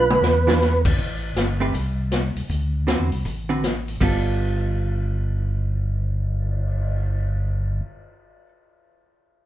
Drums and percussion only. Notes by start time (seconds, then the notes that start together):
0.10 mid tom
0.23 snare
0.48 snare
0.61 snare
0.85 kick, crash
0.99 kick
1.36 snare, closed hi-hat
1.74 kick, open hi-hat
2.12 snare, closed hi-hat
2.37 open hi-hat
2.50 kick, open hi-hat
2.88 snare, closed hi-hat
3.12 open hi-hat
3.25 kick, open hi-hat
3.64 snare, closed hi-hat
3.88 open hi-hat
4.01 kick, crash
4.26 cymbal swell